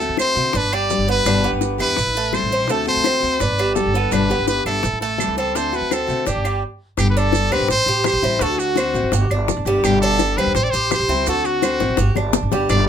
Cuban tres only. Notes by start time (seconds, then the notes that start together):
Already playing: A3
0.19 C4
0.55 D4
0.73 G3
1.09 B3
1.26 D4
1.44 B3
1.80 E4
2.17 A3
2.52 C4
2.70 A3
3.06 C4
3.41 D4
3.59 G3
3.95 B3
4.13 D4
4.31 B3
4.66 E4
5.02 A3
5.38 C4
5.56 A3
5.92 C4
6.27 D4
6.45 G3
7.17 D4
7.52 C4
7.88 G4
8.24 C4
8.41 F#4
8.77 C4
9.13 G4
9.31 D4
9.67 G3
10.03 D4
10.38 C4
10.74 G4
11.09 C4
11.28 F#4
11.63 C4
11.99 G4
12.17 D4
12.53 G3